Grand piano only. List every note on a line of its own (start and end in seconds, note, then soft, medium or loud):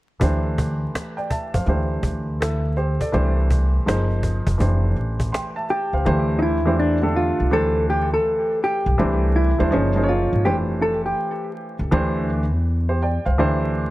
0.20 1.64 E3 medium
0.20 1.64 A3 medium
0.20 1.65 D4 medium
0.20 1.65 G4 medium
0.20 0.94 C5 medium
1.17 1.30 D5 soft
1.17 1.30 G5 medium
1.30 1.53 E5 soft
1.30 1.53 A5 medium
1.54 1.68 C5 soft
1.54 1.89 F5 medium
1.66 3.10 E3 medium
1.66 3.11 A3 soft
1.66 3.11 D4 medium
1.66 2.40 G4 medium
1.66 2.40 C5 medium
2.41 2.76 E4 soft
2.41 2.75 A4 medium
2.77 3.00 G4 medium
2.77 2.99 C5 medium
3.01 3.36 A4 medium
3.01 3.36 D5 medium
3.12 3.86 E3 medium
3.12 3.86 A3 medium
3.12 3.87 D4 medium
3.12 3.87 G4 medium
3.12 3.87 C5 medium
3.86 4.60 F3 medium
3.86 4.60 A#3 medium
3.86 4.60 D#4 medium
3.86 4.60 G#4 medium
3.86 4.60 C5 medium
4.58 6.02 E3 medium
4.58 6.03 A3 soft
4.58 6.03 D4 medium
4.58 6.04 G4 medium
4.58 5.33 C5 medium
5.32 5.56 G5 medium
5.32 5.55 C6 medium
5.56 5.92 E5 soft
5.56 5.91 A5 medium
5.94 6.05 C5 medium
5.94 6.28 F5 medium
6.05 6.57 E3 medium
6.05 6.57 A3 medium
6.05 6.57 D4 medium
6.05 6.57 G4 medium
6.05 6.57 C5 medium
6.66 6.96 E3 medium
6.66 6.97 A3 medium
6.66 6.97 D4 medium
6.66 6.97 G4 medium
6.66 6.97 C5 medium
7.02 7.52 D3 medium
7.02 7.50 A3 medium
7.02 7.50 D4 medium
7.02 7.51 G4 medium
7.02 7.53 A4 medium
7.51 8.84 E3 medium
7.51 8.84 A3 medium
7.51 8.84 D4 medium
7.51 8.84 G4 medium
7.51 8.85 C5 medium
8.98 9.49 E3 medium
8.98 9.50 A3 medium
8.98 9.50 D4 medium
8.98 9.50 G4 medium
8.98 9.50 C5 medium
9.58 9.72 E3 medium
9.58 9.72 A3 medium
9.58 9.72 D4 medium
9.58 9.72 G4 medium
9.58 9.71 C5 medium
9.71 9.92 F3 medium
9.71 9.92 A#3 medium
9.71 9.93 D#4 medium
9.71 9.93 G#4 medium
9.71 9.93 C5 medium
9.95 10.45 F3 medium
9.95 10.45 A#3 medium
9.95 10.46 D#4 medium
9.95 10.46 G#4 medium
9.95 10.01 C5 medium
10.03 10.49 C#5 medium
10.45 11.77 E3 medium
10.45 11.77 A3 medium
10.45 11.78 D4 medium
10.45 11.78 G4 medium
10.45 11.78 C5 medium
11.91 12.42 E3 medium
11.91 12.43 A3 medium
11.91 12.43 D4 medium
11.91 12.29 G4 medium
11.91 12.29 C5 medium
12.89 13.02 G4 medium
12.89 13.01 C5 medium
13.02 13.25 D5 medium
13.02 13.24 G5 medium
13.26 13.38 C5 soft
13.26 13.60 F5 medium
13.38 13.90 E3 medium
13.38 13.90 A3 medium
13.38 13.90 D4 medium
13.38 13.90 G4 medium
13.38 13.90 C5 medium